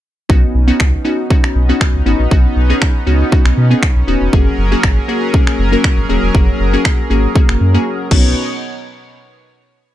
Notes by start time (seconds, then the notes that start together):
0.29 B1 B3 C#4 D#4 F#4, kick
0.55 B1
0.68 B3 C#4 D#4 F#4
0.80 C#2, finger snap, kick
1.05 B3 C#4 D#4 F#4
1.30 B3 C#4 D#4 F#4, kick
1.44 finger snap
1.55 B1
1.69 B3 C#4 D#4 F#4
1.81 finger snap, kick
1.94 C#2
2.06 G#1 B3 C#4 D#4 F#4
2.19 A#1
2.31 B1 B3 C#4 D#4 F#4, kick
2.56 B1
2.70 B3 C#4 D#4 G#4
2.82 finger snap, kick
3.07 C#2 B3 C#4 D#4 F#4
3.32 B3 C#4 D#4 F#4, kick
3.45 B1, finger snap
3.57 B2
3.71 B3 C#4 D#4 G#4
3.83 finger snap, kick
3.96 B1
4.08 D#1 B3 C#4 D#4 F#4
4.21 E1
4.33 F#1 F#3 A#3 C#4 F#4 G#4 A#4, kick
4.58 F#1
4.72 A#3 C#4 F#4 G#4
4.83 G#1, finger snap, kick
5.08 A#3 C#4 F#4 G#4
5.34 A#3 C#4 F#4 G#4, kick
5.47 finger snap
5.59 F#1
5.72 A#3 C#4 F#4 A#4
5.84 finger snap, kick
5.98 G#1
6.09 D#1 A#3 C#4 F#4 G#4
6.23 E1
6.34 F#1 A#3 C#4 F#4 G#4, kick
6.60 F#1
6.73 A#3 C#4 F#4 G#4
6.85 finger snap, kick
7.10 G#1 A#3 C#4 F#4 G#4
7.35 A#3 C#4 F#4 G#4, kick
7.49 F#1, finger snap
7.61 F#2
7.74 A#3 C#4 F#4 G#4
8.11 B1 B2 B3 C#4 D#4 F#4 C#5, kick, crash